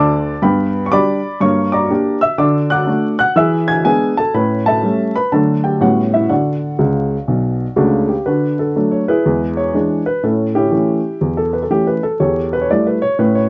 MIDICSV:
0, 0, Header, 1, 2, 480
1, 0, Start_track
1, 0, Key_signature, 2, "major"
1, 0, Tempo, 490196
1, 419, Time_signature, 4, 2, 24, 8
1, 13210, End_track
2, 0, Start_track
2, 0, Title_t, "Upright piano"
2, 0, Program_c, 0, 0
2, 0, Note_on_c, 0, 38, 73
2, 0, Note_on_c, 0, 50, 80
2, 0, Note_on_c, 0, 74, 67
2, 0, Note_on_c, 0, 81, 69
2, 0, Note_on_c, 0, 86, 89
2, 321, Note_off_c, 0, 50, 0
2, 324, Note_off_c, 0, 38, 0
2, 394, Note_off_c, 0, 74, 0
2, 394, Note_off_c, 0, 81, 0
2, 412, Note_on_c, 0, 43, 79
2, 417, Note_on_c, 0, 83, 68
2, 420, Note_off_c, 0, 86, 0
2, 425, Note_on_c, 0, 79, 55
2, 431, Note_on_c, 0, 71, 53
2, 434, Note_on_c, 0, 59, 49
2, 604, Control_c, 0, 64, 127
2, 693, Note_off_c, 0, 59, 0
2, 822, Note_off_c, 0, 43, 0
2, 824, Note_off_c, 0, 79, 0
2, 826, Note_off_c, 0, 71, 0
2, 844, Note_on_c, 0, 85, 64
2, 849, Note_off_c, 0, 83, 0
2, 894, Note_off_c, 0, 85, 0
2, 896, Note_on_c, 0, 55, 45
2, 897, Note_on_c, 0, 86, 92
2, 901, Note_on_c, 0, 62, 57
2, 904, Control_c, 0, 64, 0
2, 904, Note_on_c, 0, 67, 59
2, 911, Note_on_c, 0, 83, 74
2, 913, Note_on_c, 0, 74, 70
2, 1159, Note_off_c, 0, 55, 0
2, 1163, Note_off_c, 0, 62, 0
2, 1166, Note_off_c, 0, 67, 0
2, 1350, Note_off_c, 0, 83, 0
2, 1351, Note_off_c, 0, 74, 0
2, 1375, Note_on_c, 0, 43, 70
2, 1376, Note_off_c, 0, 86, 0
2, 1381, Note_on_c, 0, 85, 81
2, 1388, Note_on_c, 0, 73, 64
2, 1393, Note_on_c, 0, 58, 48
2, 1589, Control_c, 0, 64, 127
2, 1652, Note_off_c, 0, 58, 0
2, 1673, Note_off_c, 0, 73, 0
2, 1685, Note_on_c, 0, 86, 75
2, 1691, Note_off_c, 0, 85, 0
2, 1696, Note_on_c, 0, 82, 57
2, 1701, Note_on_c, 0, 74, 54
2, 1783, Note_off_c, 0, 43, 0
2, 1854, Note_on_c, 0, 58, 45
2, 1862, Note_on_c, 0, 62, 51
2, 1867, Note_on_c, 0, 67, 54
2, 1869, Control_c, 0, 64, 0
2, 2117, Note_off_c, 0, 58, 0
2, 2123, Note_off_c, 0, 62, 0
2, 2127, Note_off_c, 0, 67, 0
2, 2138, Note_off_c, 0, 82, 0
2, 2141, Note_off_c, 0, 74, 0
2, 2166, Note_off_c, 0, 86, 0
2, 2167, Note_on_c, 0, 88, 80
2, 2179, Note_on_c, 0, 76, 54
2, 2328, Note_off_c, 0, 76, 0
2, 2331, Note_on_c, 0, 50, 77
2, 2334, Note_off_c, 0, 88, 0
2, 2335, Note_on_c, 0, 86, 75
2, 2345, Note_on_c, 0, 74, 56
2, 2355, Note_on_c, 0, 66, 43
2, 2509, Control_c, 0, 64, 127
2, 2613, Note_off_c, 0, 66, 0
2, 2630, Note_off_c, 0, 74, 0
2, 2645, Note_off_c, 0, 86, 0
2, 2646, Note_on_c, 0, 90, 80
2, 2655, Note_on_c, 0, 78, 64
2, 2660, Note_on_c, 0, 86, 60
2, 2739, Note_off_c, 0, 50, 0
2, 2810, Note_on_c, 0, 57, 41
2, 2810, Note_on_c, 0, 62, 45
2, 2815, Note_on_c, 0, 66, 51
2, 2823, Control_c, 0, 64, 0
2, 3074, Note_off_c, 0, 57, 0
2, 3074, Note_off_c, 0, 62, 0
2, 3078, Note_off_c, 0, 66, 0
2, 3096, Note_off_c, 0, 78, 0
2, 3099, Note_off_c, 0, 86, 0
2, 3107, Note_off_c, 0, 90, 0
2, 3122, Note_on_c, 0, 90, 88
2, 3136, Note_on_c, 0, 78, 78
2, 3286, Note_off_c, 0, 78, 0
2, 3286, Note_on_c, 0, 52, 71
2, 3290, Note_off_c, 0, 90, 0
2, 3292, Note_on_c, 0, 88, 76
2, 3300, Note_on_c, 0, 76, 61
2, 3310, Note_on_c, 0, 68, 51
2, 3474, Control_c, 0, 64, 127
2, 3569, Note_off_c, 0, 68, 0
2, 3587, Note_off_c, 0, 76, 0
2, 3601, Note_on_c, 0, 92, 81
2, 3605, Note_off_c, 0, 88, 0
2, 3613, Note_on_c, 0, 80, 57
2, 3696, Note_off_c, 0, 52, 0
2, 3753, Note_off_c, 0, 80, 0
2, 3768, Note_on_c, 0, 56, 47
2, 3768, Note_on_c, 0, 80, 85
2, 3770, Note_off_c, 0, 92, 0
2, 3774, Note_on_c, 0, 59, 45
2, 3777, Note_on_c, 0, 62, 50
2, 3778, Note_on_c, 0, 68, 58
2, 3785, Control_c, 0, 64, 0
2, 4033, Note_off_c, 0, 56, 0
2, 4037, Note_off_c, 0, 59, 0
2, 4039, Note_off_c, 0, 62, 0
2, 4066, Note_off_c, 0, 68, 0
2, 4082, Note_off_c, 0, 80, 0
2, 4088, Note_on_c, 0, 81, 78
2, 4100, Note_on_c, 0, 69, 58
2, 4248, Note_off_c, 0, 69, 0
2, 4252, Note_on_c, 0, 45, 58
2, 4253, Note_off_c, 0, 81, 0
2, 4255, Note_on_c, 0, 83, 65
2, 4264, Note_on_c, 0, 71, 54
2, 4270, Note_on_c, 0, 61, 44
2, 4475, Control_c, 0, 64, 127
2, 4529, Note_off_c, 0, 61, 0
2, 4549, Note_off_c, 0, 71, 0
2, 4564, Note_on_c, 0, 81, 84
2, 4566, Note_off_c, 0, 83, 0
2, 4576, Note_on_c, 0, 69, 54
2, 4580, Note_on_c, 0, 76, 56
2, 4659, Note_off_c, 0, 45, 0
2, 4727, Note_on_c, 0, 55, 42
2, 4734, Note_on_c, 0, 57, 47
2, 4736, Note_on_c, 0, 61, 47
2, 4740, Control_c, 0, 64, 0
2, 4992, Note_off_c, 0, 55, 0
2, 4997, Note_off_c, 0, 57, 0
2, 4999, Note_off_c, 0, 61, 0
2, 5016, Note_off_c, 0, 69, 0
2, 5019, Note_off_c, 0, 76, 0
2, 5044, Note_off_c, 0, 81, 0
2, 5048, Note_on_c, 0, 83, 80
2, 5051, Note_on_c, 0, 71, 58
2, 5203, Note_off_c, 0, 71, 0
2, 5211, Note_on_c, 0, 50, 69
2, 5211, Note_on_c, 0, 81, 58
2, 5213, Note_off_c, 0, 83, 0
2, 5215, Note_on_c, 0, 54, 39
2, 5222, Note_on_c, 0, 57, 37
2, 5226, Note_on_c, 0, 62, 42
2, 5228, Note_on_c, 0, 69, 49
2, 5234, Note_on_c, 0, 66, 44
2, 5406, Control_c, 0, 64, 127
2, 5478, Note_off_c, 0, 54, 0
2, 5483, Note_off_c, 0, 57, 0
2, 5485, Note_off_c, 0, 62, 0
2, 5491, Note_off_c, 0, 66, 0
2, 5511, Note_off_c, 0, 69, 0
2, 5521, Note_on_c, 0, 79, 60
2, 5524, Note_off_c, 0, 81, 0
2, 5535, Note_on_c, 0, 67, 44
2, 5619, Note_off_c, 0, 50, 0
2, 5685, Note_off_c, 0, 67, 0
2, 5685, Note_on_c, 0, 45, 63
2, 5687, Note_on_c, 0, 55, 39
2, 5689, Note_off_c, 0, 79, 0
2, 5695, Note_on_c, 0, 78, 65
2, 5699, Note_on_c, 0, 59, 37
2, 5700, Note_on_c, 0, 61, 47
2, 5702, Control_c, 0, 64, 0
2, 5703, Note_on_c, 0, 66, 52
2, 5857, Control_c, 0, 64, 127
2, 5952, Note_off_c, 0, 55, 0
2, 5961, Note_off_c, 0, 59, 0
2, 5968, Note_off_c, 0, 61, 0
2, 5989, Note_off_c, 0, 66, 0
2, 6006, Note_off_c, 0, 78, 0
2, 6009, Note_on_c, 0, 76, 53
2, 6024, Note_on_c, 0, 64, 49
2, 6095, Note_off_c, 0, 45, 0
2, 6163, Note_on_c, 0, 50, 56
2, 6163, Note_on_c, 0, 78, 57
2, 6170, Note_off_c, 0, 64, 0
2, 6172, Note_on_c, 0, 74, 39
2, 6174, Note_off_c, 0, 76, 0
2, 6175, Note_on_c, 0, 66, 44
2, 6185, Control_c, 0, 64, 0
2, 6369, Control_c, 0, 64, 127
2, 6574, Note_off_c, 0, 50, 0
2, 6645, Note_on_c, 0, 37, 60
2, 6646, Note_on_c, 0, 49, 53
2, 6663, Control_c, 0, 64, 0
2, 7008, Note_off_c, 0, 37, 0
2, 7008, Note_off_c, 0, 49, 0
2, 7125, Note_on_c, 0, 35, 50
2, 7127, Note_on_c, 0, 47, 54
2, 7488, Note_off_c, 0, 35, 0
2, 7489, Note_off_c, 0, 47, 0
2, 7574, Note_off_c, 0, 74, 0
2, 7575, Note_off_c, 0, 66, 0
2, 7601, Note_on_c, 0, 37, 56
2, 7602, Note_on_c, 0, 49, 60
2, 7606, Note_on_c, 0, 66, 59
2, 7608, Note_off_c, 0, 78, 0
2, 7615, Note_on_c, 0, 57, 47
2, 7615, Note_on_c, 0, 62, 56
2, 7905, Note_off_c, 0, 57, 0
2, 7905, Note_off_c, 0, 62, 0
2, 7918, Note_on_c, 0, 67, 47
2, 7923, Note_off_c, 0, 66, 0
2, 7966, Note_off_c, 0, 37, 0
2, 7966, Note_off_c, 0, 49, 0
2, 8086, Note_on_c, 0, 71, 63
2, 8088, Note_on_c, 0, 50, 50
2, 8089, Note_off_c, 0, 67, 0
2, 8099, Note_on_c, 0, 66, 38
2, 8101, Note_on_c, 0, 62, 42
2, 8264, Control_c, 0, 64, 127
2, 8388, Note_off_c, 0, 66, 0
2, 8389, Note_off_c, 0, 62, 0
2, 8403, Note_off_c, 0, 71, 0
2, 8413, Note_on_c, 0, 69, 55
2, 8499, Note_off_c, 0, 50, 0
2, 8577, Note_on_c, 0, 54, 44
2, 8579, Note_on_c, 0, 57, 44
2, 8580, Note_on_c, 0, 62, 39
2, 8582, Control_c, 0, 64, 0
2, 8729, Note_on_c, 0, 73, 50
2, 8734, Note_off_c, 0, 69, 0
2, 8841, Note_off_c, 0, 54, 0
2, 8842, Note_off_c, 0, 57, 0
2, 8843, Note_off_c, 0, 62, 0
2, 8887, Note_off_c, 0, 73, 0
2, 8894, Note_on_c, 0, 71, 69
2, 8906, Note_on_c, 0, 64, 57
2, 8907, Note_on_c, 0, 68, 53
2, 9063, Note_on_c, 0, 40, 59
2, 9080, Note_on_c, 0, 56, 39
2, 9224, Control_c, 0, 64, 127
2, 9338, Note_off_c, 0, 56, 0
2, 9345, Note_off_c, 0, 64, 0
2, 9345, Note_off_c, 0, 68, 0
2, 9371, Note_on_c, 0, 73, 64
2, 9372, Note_off_c, 0, 71, 0
2, 9469, Note_off_c, 0, 40, 0
2, 9540, Note_on_c, 0, 52, 36
2, 9547, Note_on_c, 0, 56, 42
2, 9549, Control_c, 0, 64, 0
2, 9551, Note_on_c, 0, 62, 46
2, 9804, Note_off_c, 0, 52, 0
2, 9809, Note_off_c, 0, 56, 0
2, 9811, Note_off_c, 0, 62, 0
2, 9851, Note_off_c, 0, 73, 0
2, 9852, Note_on_c, 0, 71, 66
2, 10018, Note_off_c, 0, 71, 0
2, 10020, Note_on_c, 0, 45, 49
2, 10023, Note_on_c, 0, 69, 48
2, 10033, Note_on_c, 0, 61, 47
2, 10036, Note_on_c, 0, 64, 37
2, 10229, Control_c, 0, 64, 127
2, 10318, Note_off_c, 0, 61, 0
2, 10319, Note_off_c, 0, 64, 0
2, 10331, Note_on_c, 0, 67, 73
2, 10334, Note_off_c, 0, 69, 0
2, 10343, Note_on_c, 0, 64, 50
2, 10345, Note_on_c, 0, 61, 51
2, 10428, Note_off_c, 0, 45, 0
2, 10481, Note_off_c, 0, 61, 0
2, 10489, Note_on_c, 0, 52, 43
2, 10493, Note_on_c, 0, 57, 40
2, 10496, Note_on_c, 0, 61, 45
2, 10509, Control_c, 0, 64, 0
2, 10757, Note_off_c, 0, 52, 0
2, 10759, Note_off_c, 0, 57, 0
2, 10762, Note_off_c, 0, 61, 0
2, 10978, Note_on_c, 0, 40, 53
2, 11104, Note_off_c, 0, 64, 0
2, 11136, Note_on_c, 0, 69, 61
2, 11137, Note_off_c, 0, 67, 0
2, 11292, Note_on_c, 0, 71, 45
2, 11293, Note_off_c, 0, 69, 0
2, 11377, Note_off_c, 0, 71, 0
2, 11384, Note_on_c, 0, 69, 44
2, 11388, Note_off_c, 0, 40, 0
2, 11461, Note_on_c, 0, 52, 38
2, 11462, Note_on_c, 0, 57, 34
2, 11463, Note_on_c, 0, 61, 40
2, 11464, Note_off_c, 0, 69, 0
2, 11464, Note_on_c, 0, 67, 71
2, 11619, Note_off_c, 0, 67, 0
2, 11625, Note_on_c, 0, 71, 55
2, 11726, Note_off_c, 0, 52, 0
2, 11726, Note_off_c, 0, 57, 0
2, 11727, Note_off_c, 0, 61, 0
2, 11778, Note_off_c, 0, 71, 0
2, 11781, Note_on_c, 0, 69, 59
2, 11941, Note_off_c, 0, 69, 0
2, 11945, Note_on_c, 0, 40, 50
2, 11946, Note_on_c, 0, 73, 61
2, 11955, Note_on_c, 0, 69, 44
2, 11956, Note_on_c, 0, 67, 43
2, 12109, Control_c, 0, 64, 127
2, 12241, Note_off_c, 0, 67, 0
2, 12241, Note_off_c, 0, 69, 0
2, 12258, Note_off_c, 0, 73, 0
2, 12268, Note_on_c, 0, 71, 66
2, 12346, Note_off_c, 0, 71, 0
2, 12351, Note_on_c, 0, 73, 55
2, 12353, Note_off_c, 0, 40, 0
2, 12429, Note_off_c, 0, 73, 0
2, 12435, Control_c, 0, 64, 0
2, 12437, Note_on_c, 0, 55, 36
2, 12438, Note_on_c, 0, 57, 46
2, 12442, Note_on_c, 0, 74, 66
2, 12448, Note_on_c, 0, 64, 45
2, 12589, Note_off_c, 0, 74, 0
2, 12599, Note_on_c, 0, 71, 52
2, 12698, Note_off_c, 0, 55, 0
2, 12698, Note_off_c, 0, 57, 0
2, 12706, Note_off_c, 0, 64, 0
2, 12746, Note_off_c, 0, 71, 0
2, 12748, Note_on_c, 0, 73, 80
2, 12910, Note_off_c, 0, 73, 0
2, 12913, Note_on_c, 0, 45, 67
2, 12916, Note_on_c, 0, 71, 55
2, 12933, Note_on_c, 0, 61, 38
2, 13067, Note_off_c, 0, 71, 0
2, 13075, Note_on_c, 0, 73, 61
2, 13076, Control_c, 0, 64, 127
2, 13190, Note_off_c, 0, 61, 0
2, 13210, Note_off_c, 0, 45, 0
2, 13210, Note_off_c, 0, 73, 0
2, 13210, End_track
0, 0, End_of_file